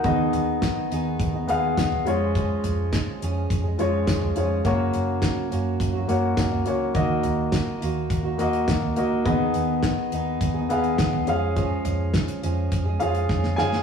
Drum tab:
HH |x-x-x-x-x-x-x-x-|x-x-x-x-x-x-x-x-|x-x-x-x-x-x-x-x-|x-x-x-x-x-xxx-x-|
SD |----o-------o---|----o-------o---|----o-------o---|----o-------o---|
FT |--o----------o--|--o----------o--|-------------o--|--o----------o--|
BD |o---o---o---o---|o---o---o---o---|o---o---o---o---|o---o---o---o---|

HH |x-x-x-x-x-xxx-x-|x-x-xxx-x-xx----|
SD |----o-------o---|----o-------oooo|
FT |-------------o--|--o-------------|
BD |o---o---o---o---|o---o---o---o---|